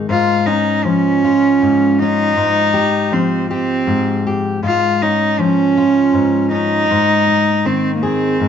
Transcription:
0.09 steel-string acoustic guitar G#2, cello F4
0.46 steel-string acoustic guitar C#4, cello D#4
0.85 steel-string acoustic guitar F3, cello C#4
1.24 steel-string acoustic guitar F4
1.62 steel-string acoustic guitar G#2
1.99 steel-string acoustic guitar C#4, cello D#4
2.37 steel-string acoustic guitar G#2
2.74 steel-string acoustic guitar G4
3.12 steel-string acoustic guitar F3, cello C4
3.51 cello C4, steel-string acoustic guitar G4
3.87 steel-string acoustic guitar G#2
4.27 steel-string acoustic guitar G4
4.63 steel-string acoustic guitar G#2, cello F4
5.02 steel-string acoustic guitar C#4, cello D#4
5.39 steel-string acoustic guitar F3, cello C#4
5.77 steel-string acoustic guitar F4
6.13 steel-string acoustic guitar G#2
6.51 steel-string acoustic guitar C#4, cello D#4
6.91 steel-string acoustic guitar G#2
7.27 steel-string acoustic guitar D#4
7.65 steel-string acoustic guitar D#3, cello C4
7.95 cello A#3
8.02 cello C4, steel-string acoustic guitar G#4
8.40 steel-string acoustic guitar G#2

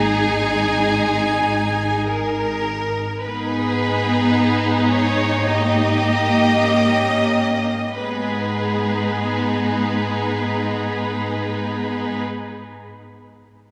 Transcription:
Already playing: double bass section G#1, cello section G#3, viola section D#4, violin section G#4 G#5
2.08 violin section A#4
3.25 cello section G#2, viola section B3 D#4, violin section D#4 G#4 B4
4.89 violin section C#5
5.46 viola section A#3, violin section G4 D#5
6.68 viola section C#4
7.98 cello section G#2, viola section G#3 B3, violin section D#4 G#4 B4

